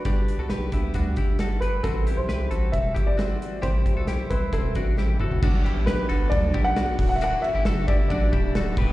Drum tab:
CC |----------------|----------------|----------------|x---------------|
RD |----------------|----------------|----------------|--x-x-x-x-x-x-x-|
HH |x-x-x-x-x-x-x-x-|x-x-x-x-x-x-x-x-|x-x-x-x-x-x-----|--------------o-|
SD |----o-------o---|----o-------o---|----o-------o---|----o-------o---|
T1 |----------------|----------------|-------------o--|----------------|
T2 |----------------|----------------|--------------o-|----------------|
FT |----------------|----------------|---------------o|----------------|
BD |o-----o-o-o-----|o-------o-o-----|o-o---o-o-o-----|o-------o-o---o-|

CC |--------------x-|
RD |x-x-x-x-x-x-x---|
HH |p---------------|
SD |----o-------o---|
T1 |----------------|
T2 |----------------|
FT |----------------|
BD |------o-o-o---o-|